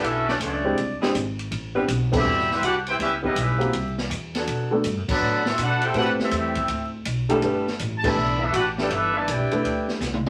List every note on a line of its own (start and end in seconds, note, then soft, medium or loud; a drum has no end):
0.00 0.39 B1 medium
0.00 0.39 D3 loud
0.00 0.39 B3 loud
0.00 0.39 C#4 loud
0.00 0.28 E4 medium
0.00 0.39 A4 loud
0.00 0.28 A4 medium
0.04 0.27 C#4 medium
0.04 0.27 F#4 medium
0.04 0.28 E5 loud
0.04 ride medium
0.28 0.34 F#3 medium
0.28 0.33 A3 medium
0.28 0.34 A3 medium
0.28 0.34 C#4 medium
0.28 0.34 D4 medium
0.28 0.34 F#4 medium
0.28 0.34 D5 medium
0.28 snare medium
0.40 0.76 C#2 loud
0.40 0.57 D3 loud
0.40 0.75 F#3 medium
0.40 0.76 A3 medium
0.40 0.57 B3 medium
0.40 0.57 C#4 medium
0.40 0.98 D4 medium
0.40 0.76 F#4 medium
0.40 0.57 A4 loud
0.40 0.75 C#5 medium
0.40 0.98 D5 medium
0.40 hi-hat pedal medium
0.40 ride medium
0.65 0.76 G#3 medium
0.65 0.76 C4 medium
0.65 0.76 D4 medium
0.65 0.77 E4 medium
0.65 0.76 G4 medium
0.78 1.00 C2 loud
0.78 ride medium
1.01 1.10 E3 loud
1.01 1.13 G#3 medium
1.01 1.10 C4 loud
1.01 1.14 C4 medium
1.01 1.10 D4 loud
1.01 1.13 D4 medium
1.01 1.14 E4 medium
1.01 1.14 G4 medium
1.01 1.10 G#4 loud
1.01 muted upright bass stroke soft
1.01 snare medium
1.15 1.50 G#1 loud
1.15 hi-hat pedal medium
1.15 ride medium
1.39 ride medium
1.51 1.87 A1 medium
1.51 ride medium
1.75 1.84 G3 loud
1.75 1.87 B3 medium
1.75 1.84 C4 loud
1.75 1.87 C4 medium
1.75 1.84 D4 medium
1.75 1.87 D4 medium
1.75 1.88 E4 medium
1.75 1.87 G4 medium
1.75 1.84 B4 loud
1.88 2.24 B1 loud
1.88 hi-hat pedal medium
1.88 ride medium
2.12 2.48 G3 loud
2.12 2.24 B3 medium
2.12 2.24 C4 medium
2.12 2.24 D4 medium
2.12 2.24 E4 medium
2.12 2.24 A4 medium
2.12 kick loud
2.12 crash loud
2.16 2.49 B2 loud
2.16 2.49 E3 loud
2.16 2.49 G4 loud
2.16 2.50 C5 medium
2.16 2.49 E5 medium
2.16 2.49 B5 loud
2.25 2.61 E2 loud
2.39 snare soft
2.51 2.63 G3 medium
2.51 2.62 C4 medium
2.51 2.63 C4 medium
2.51 2.62 E4 medium
2.51 2.63 G4 medium
2.51 2.63 B4 medium
2.51 2.63 E5 medium
2.51 snare medium
2.62 2.98 C2 medium
2.62 2.75 D4 medium
2.62 2.75 F#4 medium
2.62 2.75 G4 loud
2.62 2.75 B4 medium
2.62 2.75 F#5 loud
2.62 hi-hat pedal medium
2.62 ride medium
2.86 2.93 C4 medium
2.86 2.93 E4 medium
2.86 2.94 E4 medium
2.86 2.94 G4 medium
2.86 2.93 B4 medium
2.86 2.93 C5 medium
2.86 2.93 G5 loud
2.86 ride medium
2.99 3.35 C#2 medium
2.99 3.11 G3 medium
2.99 3.11 B3 medium
2.99 3.12 C#4 medium
2.99 3.11 E4 medium
2.99 3.11 G4 loud
2.99 3.12 B4 medium
2.99 3.12 E5 loud
2.99 ride medium
3.22 3.71 G3 loud
3.22 3.34 B3 medium
3.22 3.36 B3 medium
3.22 3.34 C#4 medium
3.22 3.71 C#4 medium
3.22 3.35 D#4 medium
3.22 3.35 E4 medium
3.22 3.36 E4 medium
3.22 3.71 E4 loud
3.22 3.35 G4 medium
3.22 3.36 G4 medium
3.22 3.71 B4 loud
3.22 3.36 D#5 medium
3.22 kick medium
3.36 3.72 B1 loud
3.36 3.93 G3 medium
3.36 3.70 B3 medium
3.36 3.72 C#4 medium
3.36 3.93 E4 medium
3.36 3.95 G4 medium
3.36 3.72 B4 medium
3.36 3.95 E5 medium
3.36 hi-hat pedal medium
3.36 ride medium
3.59 3.71 A#3 medium
3.59 3.71 C4 medium
3.59 3.72 E4 medium
3.59 3.72 F#4 medium
3.59 3.72 G4 medium
3.59 ride medium
3.73 4.09 C2 loud
3.73 ride medium
3.98 snare medium
4.10 4.46 E2 loud
4.10 hi-hat pedal medium
4.10 ride medium
4.35 4.83 F#3 loud
4.35 4.82 B3 medium
4.35 4.82 D4 loud
4.35 4.82 A4 loud
4.35 snare medium
4.35 ride medium
4.47 4.83 B2 medium
4.47 ride medium
4.71 4.83 A3 medium
4.71 4.83 B3 medium
4.71 4.83 D4 medium
4.71 4.83 F#4 medium
4.71 4.83 A4 medium
4.84 4.97 G2 loud
4.84 hi-hat pedal medium
4.84 ride medium
4.97 5.08 F#2 medium
5.08 5.20 D2 medium
5.08 5.43 D3 loud
5.08 5.43 F#3 loud
5.08 5.43 B3 loud
5.08 5.44 A4 loud
5.08 5.43 D5 medium
5.08 5.44 F#5 medium
5.08 5.43 B5 loud
5.08 kick loud
5.08 crash medium
5.21 5.57 A2 medium
5.46 5.58 C4 medium
5.46 5.58 E4 medium
5.46 5.58 F#4 medium
5.46 5.58 A4 medium
5.46 5.58 E5 medium
5.46 snare medium
5.58 5.93 B2 medium
5.58 5.84 A3 medium
5.58 5.84 D4 medium
5.58 5.83 F#4 medium
5.58 hi-hat pedal medium
5.58 ride medium
5.62 5.83 A4 loud
5.62 5.84 B4 loud
5.62 5.84 F#5 loud
5.81 6.30 G3 loud
5.81 6.30 C4 loud
5.81 6.29 E4 loud
5.81 5.96 G4 medium
5.81 6.29 A4 loud
5.81 5.96 A4 medium
5.81 5.96 C5 medium
5.81 5.97 G5 medium
5.81 ride medium
5.86 5.97 E4 medium
5.94 6.17 A2 medium
5.94 6.51 A3 medium
5.94 6.51 C4 medium
5.94 6.51 E4 medium
5.94 6.08 F#4 medium
5.94 6.52 G4 medium
5.94 6.52 B4 medium
5.94 ride medium
5.99 6.09 D4 medium
5.99 6.09 G4 medium
5.99 6.09 B4 loud
5.99 6.09 F#5 loud
6.18 6.31 G3 medium
6.18 6.32 C4 medium
6.18 6.32 E4 medium
6.18 muted upright bass stroke soft
6.18 snare medium
6.23 6.33 C4 medium
6.23 6.33 G4 medium
6.23 6.33 A4 medium
6.23 6.33 E5 loud
6.31 6.67 E2 loud
6.31 6.67 G3 medium
6.31 6.90 C4 medium
6.31 6.89 E4 medium
6.31 6.90 A4 medium
6.31 hi-hat pedal medium
6.31 ride medium
6.36 6.68 G4 medium
6.36 6.91 E5 medium
6.55 kick medium
6.55 ride medium
6.68 7.04 D2 loud
6.68 ride medium
7.05 7.42 B1 loud
7.05 hi-hat pedal medium
7.05 ride medium
7.29 7.77 G3 loud
7.29 7.41 A3 medium
7.29 7.77 B3 loud
7.29 7.41 D4 medium
7.29 7.41 E4 medium
7.29 7.78 E4 loud
7.29 7.42 G4 medium
7.29 7.77 A4 loud
7.29 7.42 A4 medium
7.29 ride medium
7.42 7.78 G1 medium
7.42 7.64 A3 medium
7.42 7.64 D4 medium
7.42 7.65 E4 medium
7.42 7.65 G4 medium
7.42 7.65 B4 medium
7.42 ride medium
7.68 snare soft
7.79 8.15 A1 loud
7.79 hi-hat pedal medium
7.79 ride medium
7.97 8.05 A5 medium
8.03 8.41 D3 loud
8.03 8.39 E3 loud
8.03 8.15 A3 medium
8.03 8.39 B3 loud
8.03 8.16 D4 medium
8.03 8.16 E4 medium
8.03 8.16 G4 medium
8.03 8.42 A4 medium
8.03 8.16 B4 medium
8.03 8.42 D5 medium
8.03 8.42 E5 medium
8.03 8.42 B5 loud
8.03 kick loud
8.03 crash medium
8.16 8.52 B1 loud
8.40 8.53 E3 medium
8.40 8.53 B3 medium
8.40 8.54 D4 medium
8.40 8.53 E4 medium
8.40 8.55 A4 medium
8.40 8.55 B4 medium
8.40 8.55 E5 medium
8.53 8.89 A1 loud
8.53 8.66 D4 medium
8.53 8.64 F#4 medium
8.53 8.66 G4 medium
8.53 8.66 B4 loud
8.53 8.66 F#5 loud
8.53 hi-hat pedal medium
8.53 ride medium
8.78 9.26 G3 loud
8.78 9.25 B3 loud
8.78 8.90 D4 medium
8.78 9.25 E4 loud
8.78 8.90 E4 medium
8.78 8.91 E4 medium
8.78 8.90 G4 medium
8.78 9.26 A4 loud
8.78 8.90 B4 medium
8.78 8.91 D5 medium
8.78 8.91 G5 medium
8.78 snare medium
8.90 9.26 G1 medium
8.90 9.14 E3 medium
8.90 9.15 B3 medium
8.90 9.16 D4 medium
8.90 9.15 E4 medium
8.90 9.16 A4 medium
8.90 9.15 B4 medium
8.90 9.16 E5 loud
8.90 ride medium
9.15 9.28 D3 medium
9.15 9.28 E3 medium
9.15 9.28 A3 medium
9.15 9.29 E4 medium
9.15 9.29 B4 medium
9.15 9.29 D5 medium
9.15 9.29 A5 medium
9.28 9.41 B1 loud
9.28 9.90 D4 medium
9.28 9.90 E4 medium
9.28 9.90 G4 medium
9.28 9.91 B4 medium
9.28 9.91 D5 medium
9.28 9.90 G5 medium
9.28 hi-hat pedal medium
9.28 ride medium
9.40 9.52 G1 medium
9.51 9.63 E1 medium
9.51 9.99 A3 medium
9.51 9.99 D4 medium
9.51 9.99 E4 medium
9.51 10.00 G4 medium
9.51 10.00 B4 medium
9.51 ride medium
9.64 10.00 D2 loud
9.64 ride medium
9.88 snare soft
10.01 10.29 C2 loud
10.01 snare medium
10.01 hi-hat pedal medium
10.14 mid tom medium